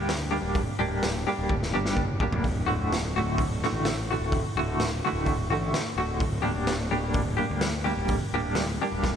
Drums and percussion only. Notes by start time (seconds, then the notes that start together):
0.09 snare, open hi-hat
0.55 kick, open hi-hat
1.03 snare, open hi-hat
1.49 kick, high tom
1.63 snare
1.86 snare
1.97 kick
2.20 kick
2.33 floor tom
2.44 kick, open hi-hat
2.93 snare, open hi-hat
3.38 kick, open hi-hat
3.63 snare
3.85 snare, open hi-hat
4.32 kick, open hi-hat
4.80 snare, open hi-hat
5.26 kick, open hi-hat
5.74 snare, open hi-hat
6.20 kick, open hi-hat
6.67 snare, open hi-hat
7.14 kick, open hi-hat
7.61 snare, open hi-hat
8.08 kick, open hi-hat
8.55 snare, open hi-hat
9.03 kick, snare